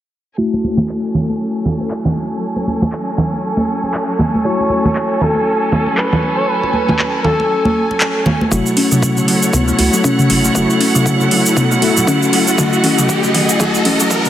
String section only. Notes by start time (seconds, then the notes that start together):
0.38 F#3 C#4 A4 G#5
8.52 E4 A4 C#5 F#5
12.58 D#5